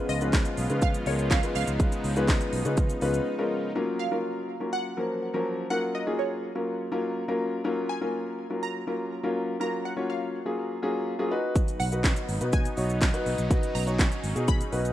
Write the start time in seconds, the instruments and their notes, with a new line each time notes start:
Already playing: analog synth pad C#3 F3 G#3 B3 F4, grand piano G#3 B3 C#4 F4 B4
0.09 fingered electric bass C#2, synth pluck D#5, open hi-hat, shaker
0.21 grand piano G#3 B3 C#4 F4 B4, closed hi-hat, shaker
0.33 kick, snare, clap, closed hi-hat, shaker
0.45 closed hi-hat, shaker
0.57 fingered electric bass B1, open hi-hat, shaker
0.70 fingered electric bass C#3, grand piano G#3 B3 C#4 F4 B4, closed hi-hat, shaker
0.82 synth pluck F5, kick, closed hi-hat, shaker
0.94 closed hi-hat, shaker
1.06 fingered electric bass C#2, grand piano G#3 B3 C#4 F4 A#4, synth pluck C#5, open hi-hat, shaker
1.19 closed hi-hat, shaker
1.31 synth pluck F5, kick, snare, clap, closed hi-hat, shaker
1.43 grand piano G#3 B3 C#4 F4 B4, closed hi-hat, shaker
1.55 fingered electric bass C#2, analog synth pad D#4, synth pluck F5, open hi-hat, shaker
1.67 fingered electric bass C#2, closed hi-hat, shaker
1.80 grand piano G#3 B3 C#4 F4 B4, kick, closed hi-hat, shaker
1.92 closed hi-hat, shaker
2.04 fingered electric bass C#2, open hi-hat, shaker
2.16 grand piano G#3 B3 C#4 F4 B4, closed hi-hat, shaker
2.28 kick, snare, clap, closed hi-hat, shaker
2.41 closed hi-hat, shaker
2.53 fingered electric bass B1, open hi-hat, shaker
2.65 fingered electric bass C#3, grand piano G#3 B3 C#4 F4 B4, closed hi-hat, shaker
2.77 kick, closed hi-hat, shaker
2.90 closed hi-hat, shaker
3.01 fingered electric bass C#2, grand piano G#3 B3 C#4 F4 B4, open hi-hat, shaker
3.14 closed hi-hat, shaker
3.38 grand piano G#3 B3 C#4 F4 A#4
3.75 grand piano F#3 A#3 C#4 F4 A#4
3.99 synth pluck F5
4.11 grand piano F#3 A#3 C#4 F4 A#4
4.60 grand piano F#3 A#3 C#4 F4 A#4
4.73 synth pluck F#5
4.97 grand piano F3 F#3 A#3 C#4 A#4
5.33 grand piano F3 F#3 A#3 C#4 A#4
5.70 grand piano F#3 A#3 C#4 F4 A#4, synth pluck F#5
5.95 synth pluck D#5
6.06 grand piano F#3 A#3 C#4 F4 G#4
6.19 synth pluck C#5
6.55 grand piano F#3 A#3 C#4 F4 A#4
6.92 grand piano F#3 A#3 C#4 F4 A#4
7.28 grand piano F#3 A#3 C#4 F4 A#4
7.64 grand piano F#3 A#3 C#4 F4 A#4
7.89 synth pluck G#5
8.01 grand piano F#3 A#3 C#4 F4 A#4
8.50 grand piano F#3 A#3 C#4 F4 A#4
8.63 synth pluck A#5
8.87 grand piano F#3 A#3 C#4 F4 A#4
9.23 grand piano F#3 A#3 C#4 F4 A#4
9.60 grand piano F#3 A#3 C#4 F4 A#4, synth pluck A#5
9.85 synth pluck F#5
9.96 grand piano F#3 A#3 C#4 F4 C#5
10.10 synth pluck F5
10.45 grand piano F#3 A#3 C#4 F4 G#4
10.82 grand piano F#3 A#3 C#4 F4 G#4
11.19 grand piano F#3 A#3 C#4 F4 G#4
11.31 grand piano D#4 F#4 B4
11.56 analog synth pad F#3 B3 D#4, kick, closed hi-hat, shaker
11.68 closed hi-hat, shaker
11.80 fingered electric bass B1, synth pluck F#5, open hi-hat, shaker
11.92 grand piano D#4 F#4 B4, closed hi-hat, shaker
12.04 kick, snare, clap, closed hi-hat, shaker
12.16 closed hi-hat, shaker
12.29 fingered electric bass G#1, open hi-hat, shaker
12.40 fingered electric bass B2, grand piano D#4 F#4 B4, closed hi-hat, shaker
12.53 synth pluck G#5, kick, closed hi-hat, shaker
12.65 closed hi-hat, shaker
12.77 fingered electric bass B1, grand piano D#4 F#4 C#5, open hi-hat, shaker
12.90 closed hi-hat, shaker
13.02 kick, snare, clap, closed hi-hat, shaker
13.13 grand piano D#4 F#4 B4, closed hi-hat, shaker
13.26 fingered electric bass B1, open hi-hat, shaker
13.38 fingered electric bass B1, closed hi-hat, shaker
13.50 analog synth pad C#4, grand piano D#4 F#4 B4, kick, closed hi-hat, shaker
13.63 closed hi-hat, shaker
13.75 fingered electric bass B1, synth pluck A#5, open hi-hat, shaker
13.87 grand piano D#4 F#4 C#5, closed hi-hat, shaker
13.99 kick, snare, clap, closed hi-hat, shaker
14.12 closed hi-hat, shaker
14.24 fingered electric bass G#1, open hi-hat, shaker
14.35 fingered electric bass B2, grand piano D#4 F#4 G#4, closed hi-hat, shaker
14.48 synth pluck B5, kick, closed hi-hat, shaker
14.61 closed hi-hat, shaker
14.72 fingered electric bass B1, grand piano D#4 F#4 B4, open hi-hat, shaker
14.85 closed hi-hat, shaker